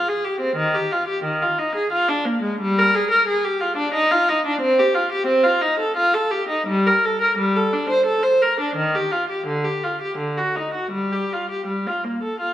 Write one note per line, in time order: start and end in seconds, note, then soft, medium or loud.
0.09 0.25 G#4 medium
0.25 0.41 G4 medium
0.41 0.57 C4 medium
0.56 0.73 D#3 medium
0.74 0.91 G4 medium
0.92 1.08 F4 medium
1.08 1.24 G4 medium
1.24 1.41 D#3 medium
1.42 1.58 F4 medium
1.59 1.75 D#4 medium
1.76 1.91 G#4 medium
1.92 2.08 F4 medium
2.09 2.25 D4 medium
2.25 2.42 A#3 medium
2.43 2.60 G#3 medium
2.61 2.78 G3 medium
2.79 2.95 A#4 medium
2.95 3.11 G#4 medium
3.11 3.27 A#4 medium
3.28 3.44 G#4 medium
3.45 3.61 G4 medium
3.61 3.77 F4 medium
3.77 3.93 D4 medium
3.94 4.10 D#4 medium
4.11 4.28 F4 medium
4.29 4.45 D#4 medium
4.46 4.62 D4 medium
4.61 4.78 C4 medium
4.79 4.95 G4 medium
4.95 5.12 F4 medium
5.12 5.29 G4 medium
5.27 5.44 C4 medium
5.44 5.62 F4 medium
5.62 5.79 D#4 medium
5.79 5.96 A4 medium
5.97 6.14 F4 medium
6.14 6.32 A4 medium
6.31 6.49 G4 medium
6.49 6.67 D#4 medium
6.67 6.85 G3 medium
6.87 7.04 A#4 medium
7.05 7.22 A4 medium
7.22 7.38 A#4 medium
7.38 7.55 G3 medium
7.56 7.73 A4 medium
7.73 7.90 D4 medium
7.90 8.07 C5 medium
8.06 8.23 A4 medium
8.23 8.41 C5 medium
8.42 8.59 A#4 medium
8.60 8.76 D4 soft
8.76 8.93 D#3 medium
8.95 9.12 G4 medium
9.12 9.29 F4 medium
9.30 9.46 G4 soft
9.47 9.64 D3 medium
9.64 9.82 G4 soft
9.83 10.00 F4 soft
10.02 10.18 G4 soft
10.18 10.35 D3 medium
10.38 10.55 F#4 soft
10.56 10.74 D#4 soft
10.74 10.93 F#4 soft
10.91 11.12 G3 soft
11.13 11.32 G4 soft
11.33 11.51 F4 soft
11.51 11.69 G4 soft
11.67 11.86 G3 soft
11.87 12.05 F4 soft
12.04 12.23 A#3 soft
12.23 12.41 A4 soft
12.40 12.54 F4 soft